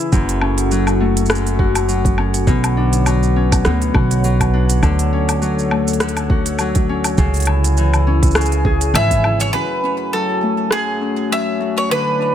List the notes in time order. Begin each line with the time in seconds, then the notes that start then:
Already playing: C#3 E3 C#4 E4 G#4
0.00 shaker
0.12 F#1 F#2 C#4 F#4 A4 F#5, kick, shaker
0.29 open hi-hat, shaker
0.41 C#4, low woodblock
0.58 open hi-hat, shaker
0.71 F#3, shaker
0.87 low woodblock, shaker
1.00 A3
1.17 open hi-hat, shaker
1.26 shaker
1.30 F#2, cross-stick, low woodblock, shaker
1.35 shaker
1.47 open hi-hat, shaker
1.59 F#4, kick
1.75 open hi-hat, low woodblock, shaker
1.88 F#3, shaker
2.05 kick, open hi-hat, shaker
2.18 C#4, low woodblock
2.34 open hi-hat, shaker
2.47 B1 B2 D3 B4 C#5, kick, shaker
2.64 open hi-hat, low woodblock, shaker
2.77 D4
2.93 open hi-hat, shaker
3.06 F#3, low woodblock, shaker
3.23 shaker
3.36 C#4
3.52 kick, open hi-hat, low woodblock, shaker
3.65 D2 B2, cross-stick, shaker
3.82 open hi-hat, shaker
3.94 B1 F#4, kick, low woodblock
4.11 open hi-hat, shaker
4.24 F#3, shaker
4.41 kick, open hi-hat, low woodblock, shaker
4.53 D4
4.70 open hi-hat, shaker
4.83 D2 D3 A4, kick, low woodblock, shaker
4.99 open hi-hat, shaker
5.13 C#4
5.29 open hi-hat, low woodblock, shaker
5.42 F#3, shaker
5.59 shaker
5.71 A3, low woodblock
5.88 open hi-hat, shaker
5.93 open hi-hat
6.00 D3, cross-stick, open hi-hat, shaker
6.09 open hi-hat
6.17 open hi-hat, low woodblock, shaker
6.30 F#4, kick
6.46 open hi-hat, shaker
6.59 F#3, low woodblock, shaker
6.75 kick, open hi-hat, shaker
6.89 C#4
7.04 open hi-hat, low woodblock, shaker
7.18 C#2 C#3 E4 G#4 G#5, kick, shaker
7.34 open hi-hat, shaker
7.36 open hi-hat
7.40 open hi-hat
7.42 open hi-hat
7.45 E4, open hi-hat, low woodblock
7.64 open hi-hat, shaker
7.77 E3, shaker
7.94 low woodblock, shaker
8.07 C#4
8.23 kick, open hi-hat, shaker
8.26 shaker
8.31 shaker
8.35 C#3, cross-stick, low woodblock, shaker
8.41 shaker
8.45 shaker
8.52 open hi-hat, shaker
8.65 G#4, kick
8.81 open hi-hat, shaker
8.94 G#1 E3 E5, low woodblock, shaker
9.11 kick, open hi-hat, shaker
9.24 E4, low woodblock
9.40 C#5, open hi-hat, shaker
9.53 F#2 A3 F#4 B4 C#5 G#5
9.83 C#4
10.13 F#3 A4
10.42 A3
10.71 F#2 G#4, cross-stick
11.01 C#4
11.30 F#3 E5
11.60 A3
11.78 C#5
11.89 D3 E4 F#4 B4 D5
12.19 D4